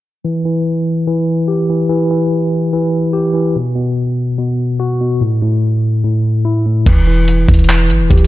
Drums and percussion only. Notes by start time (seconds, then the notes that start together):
6.86 kick, closed hi-hat, crash
7.28 closed hi-hat
7.49 kick, closed hi-hat
7.54 closed hi-hat
7.59 closed hi-hat
7.64 closed hi-hat
7.69 clap, closed hi-hat
7.90 closed hi-hat
8.11 kick, closed hi-hat
8.18 closed hi-hat